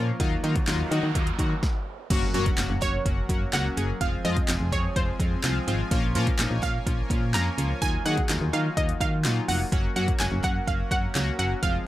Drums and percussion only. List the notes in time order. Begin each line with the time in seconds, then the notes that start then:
0.20 kick, closed hi-hat
0.44 closed hi-hat
0.56 kick, closed hi-hat
0.67 snare, clap, closed hi-hat
0.92 closed hi-hat
1.15 kick, closed hi-hat
1.27 closed hi-hat
1.39 kick, closed hi-hat
1.63 kick, snare
2.10 kick, closed hi-hat, crash
2.34 closed hi-hat
2.46 kick, closed hi-hat
2.58 snare, clap, closed hi-hat
2.82 kick, clap, closed hi-hat
3.06 kick, closed hi-hat
3.29 kick, closed hi-hat
3.53 snare, clap, closed hi-hat
3.77 closed hi-hat
4.01 kick, closed hi-hat
4.25 closed hi-hat
4.37 kick, closed hi-hat
4.48 snare, clap, closed hi-hat
4.72 kick, closed hi-hat
4.96 kick, closed hi-hat
5.20 kick, closed hi-hat
5.44 snare, clap, closed hi-hat
5.68 closed hi-hat
5.91 kick, closed hi-hat
6.15 closed hi-hat
6.27 kick, closed hi-hat
6.39 snare, clap, closed hi-hat
6.63 kick, clap, closed hi-hat
6.87 kick, closed hi-hat
7.10 kick, closed hi-hat
7.34 snare, clap, closed hi-hat
7.58 closed hi-hat
7.82 kick, closed hi-hat
8.06 closed hi-hat
8.18 kick, closed hi-hat
8.29 snare, clap, closed hi-hat
8.54 closed hi-hat
8.77 kick, closed hi-hat
8.89 closed hi-hat
9.01 kick, closed hi-hat
9.25 snare, clap, closed hi-hat
9.49 open hi-hat
9.72 kick, closed hi-hat
9.96 closed hi-hat
10.08 kick, closed hi-hat
10.20 snare, clap, closed hi-hat
10.44 kick, clap, closed hi-hat
10.67 kick, closed hi-hat
10.91 kick, closed hi-hat
11.15 snare, clap, closed hi-hat
11.39 closed hi-hat
11.63 kick, closed hi-hat